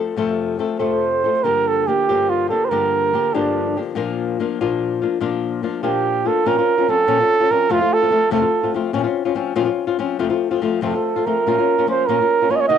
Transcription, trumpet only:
0.79 1.45 C5 medium
1.43 1.69 A#4 medium
1.67 1.89 A4 medium
1.87 2.31 G4 medium
2.29 2.48 F4 medium
2.49 2.66 A4 medium
2.65 2.71 C5 medium
2.69 3.35 A#4 medium
3.34 3.81 D4 medium
5.84 6.29 G4 medium
6.27 6.49 A4 medium
6.47 6.91 A#4 medium
6.89 7.53 A4 medium
7.51 7.73 A#4 medium
7.71 7.95 F4 medium
7.93 8.31 A4 medium
8.32 8.76 A4 medium
10.84 11.27 A4 medium
11.25 11.87 A#4 medium
11.89 12.09 C5 medium
12.07 12.52 A#4 medium
12.51 12.57 C#5 medium
12.55 12.62 D#5 medium
12.60 12.67 C#5 medium
12.68 12.78 D#5 loud

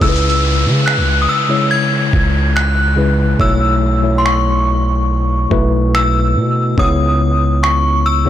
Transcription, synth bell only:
0.02 0.89 E6 medium
0.86 1.22 F#6 medium
1.22 1.29 D#6 medium
1.29 1.68 E6 medium
1.71 2.58 G#6 loud
2.56 3.42 F#6 medium
3.41 4.14 E6 loud
4.18 4.25 C6 medium
4.26 5.90 C#6 medium
5.95 6.81 E6 medium
6.79 7.59 D#6 loud
7.63 8.06 C#6 medium
8.06 8.30 E6 loud

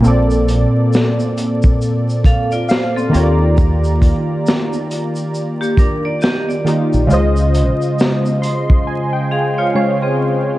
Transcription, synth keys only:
0.01 3.08 A#2 medium
0.01 3.08 A#3 medium
0.01 3.09 C4 medium
0.06 3.10 A4 medium
0.06 3.11 D5 medium
2.69 3.10 F5 medium
3.09 6.61 D#3 medium
3.09 6.61 A#3 medium
3.09 6.62 F4 medium
3.09 3.54 A#5 medium
3.15 6.63 G4 medium
3.15 3.23 C#5 medium
3.23 6.67 D5 medium
6.65 7.10 D#3 medium
6.65 7.10 A#3 medium
6.65 7.11 D#4 medium
6.65 7.09 F4 medium
6.65 7.11 G4 medium
7.07 9.70 C#3 medium
7.07 9.70 G#3 medium
7.07 9.71 F4 medium
7.12 9.72 C5 medium
7.12 9.73 D#5 loud
8.42 8.83 C6 medium
8.87 9.12 G#5 medium
9.13 9.54 G5 medium
9.59 9.74 F5 medium
9.74 10.59 C#3 medium
9.74 10.59 G#3 medium
9.74 10.59 F4 soft
9.74 10.01 C5 medium
9.74 10.01 C#5 medium
9.74 10.59 F5 medium
10.02 10.59 C5 medium

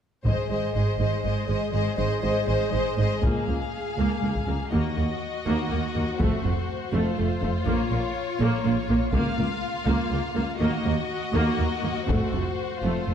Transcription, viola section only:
0.26 0.50 G#3 soft
0.26 0.50 G#4 soft
0.51 0.75 G#3 soft
0.51 0.74 G#4 soft
0.76 0.99 G#3 soft
0.76 0.98 G#4 soft
1.00 1.24 G#3 soft
1.00 1.24 G#4 soft
1.25 1.48 G#3 soft
1.25 1.48 G#4 soft
1.50 1.73 G#3 soft
1.50 1.73 G#4 soft
1.74 1.98 G#3 soft
1.74 1.97 G#4 soft
1.99 2.22 G#3 soft
1.99 2.22 G#4 soft
2.23 2.47 G#3 soft
2.23 2.47 G#4 soft
2.48 2.72 G#3 soft
2.48 2.72 G#4 soft
2.73 2.98 G#3 soft
2.73 2.98 G#4 soft
2.99 3.23 G#3 soft
2.99 3.23 G#4 soft
3.24 3.47 A#3 soft
3.48 3.56 A#3 soft
3.98 4.21 A#3 soft
4.23 4.31 A#3 soft
4.48 4.56 A#3 soft
4.73 4.96 A#3 soft
4.97 5.05 A#3 soft
5.46 5.69 A#3 soft
5.71 5.79 A#3 soft
5.95 6.03 A#3 soft
6.19 6.42 A3 medium
6.45 6.53 A3 soft
6.93 7.16 A3 medium
7.18 7.26 A3 soft
7.42 7.50 A3 soft
7.67 7.90 A#3 soft
7.91 7.99 A#3 soft
8.41 8.63 A#3 medium
8.65 8.73 A#3 soft
8.90 8.98 A#3 soft
9.14 9.36 A#3 medium
9.38 9.46 A#3 soft
9.87 10.10 A#3 medium
10.12 10.20 A#3 soft
10.36 10.44 A#3 soft
10.60 10.83 A#3 soft
10.84 10.92 A#3 soft
11.34 11.57 A#3 medium
11.58 11.66 A#3 soft
11.83 11.91 A#3 soft
12.08 12.31 A3 soft
12.34 12.42 A3 soft
12.83 13.06 A3 soft
13.09 13.14 A3 soft

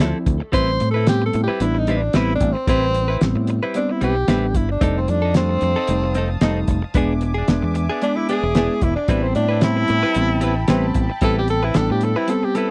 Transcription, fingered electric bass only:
0.00 0.12 D2 loud
0.26 0.39 D2 loud
0.53 0.77 A1 medium
0.81 1.29 A2 medium
1.34 1.47 A2 loud
1.49 muted fingered electric bass stroke soft
1.60 2.08 A1 medium
2.15 2.38 A1 medium
2.41 2.53 A1 loud
2.67 3.16 A1 medium
3.21 3.34 A1 medium
3.35 3.59 A2 medium
4.02 4.26 B1 medium
4.28 4.52 A1 medium
4.54 4.79 G1 medium
4.81 5.05 F1 medium
5.08 5.56 F2 medium
5.62 5.75 F2 medium
5.76 muted fingered electric bass stroke soft
5.88 6.36 F1 medium
6.42 6.66 F1 medium
6.68 6.81 F1 loud
6.94 7.43 E1 medium
7.49 7.62 E1 medium
7.63 7.87 E2 medium
8.43 8.67 E1 loud
8.82 8.95 E1 loud
9.08 9.33 A1 medium
9.36 9.84 A2 medium
9.90 10.02 A2 loud
10.03 muted fingered electric bass stroke soft
10.16 10.64 A1 medium
10.69 10.93 A1 medium
10.95 11.08 A1 loud
11.22 11.70 A1 medium
11.76 11.89 A1 medium
11.91 12.14 A2 medium

